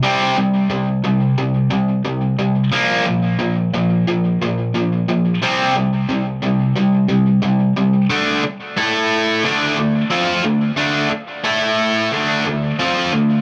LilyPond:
\new Staff \with { instrumentName = "Distorted electric guitar" } { \clef bass \time 4/4 \key d \minor \tempo 4 = 90 <c g c'>8 <c g>8 <c g>8 <c g>8 <c g>8 <c g>8 <c g>8 <c g>8 | <bes, f bes>8 <bes, f>8 <bes, f>8 <bes, f>8 <bes, f>8 <bes, f>8 <bes, f>8 <bes, f>8 | <c g c'>8 <c g>8 <c g>8 <c g>8 <c g>8 <c g>8 <c g>8 <c g>8 | <d a d'>8 r8 <a e' a'>4 <d a d'>8 <d a>8 <f c' f'>8 <d a>8 |
<d a d'>8 r8 <a e' a'>4 <d a d'>8 <d a>8 <f c' f'>8 <d a>8 | }